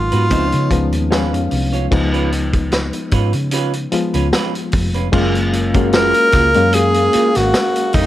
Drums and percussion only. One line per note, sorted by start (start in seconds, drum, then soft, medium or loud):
0.12 closed hi-hat soft
0.30 kick medium
0.30 closed hi-hat medium
0.52 closed hi-hat medium
0.71 kick medium
0.71 closed hi-hat medium
0.92 closed hi-hat medium
1.12 snare loud
1.12 closed hi-hat medium
1.34 closed hi-hat soft
1.51 open hi-hat medium
1.73 closed hi-hat soft
1.92 kick loud
1.92 crash medium
2.14 closed hi-hat soft
2.32 closed hi-hat medium
2.53 kick medium
2.53 closed hi-hat soft
2.72 snare medium
2.72 closed hi-hat medium
2.93 closed hi-hat medium
3.11 kick medium
3.11 closed hi-hat medium
3.33 closed hi-hat soft
3.51 closed hi-hat medium
3.73 closed hi-hat medium
3.92 closed hi-hat medium
4.14 closed hi-hat medium
4.33 snare loud
4.33 closed hi-hat medium
4.55 closed hi-hat medium
4.72 kick medium
4.72 open hi-hat medium
4.94 closed hi-hat soft
5.13 kick loud
5.13 crash medium
5.35 closed hi-hat soft
5.53 closed hi-hat medium
5.74 kick medium
5.74 closed hi-hat soft
5.93 snare medium
5.93 closed hi-hat medium
6.14 closed hi-hat medium
6.32 kick medium
6.32 snare soft
6.32 closed hi-hat medium
6.54 closed hi-hat medium
6.73 closed hi-hat medium
6.94 closed hi-hat medium
7.13 closed hi-hat medium
7.35 snare soft
7.35 closed hi-hat medium
7.54 snare loud
7.54 closed hi-hat medium
7.76 closed hi-hat medium
7.93 kick medium
7.93 open hi-hat medium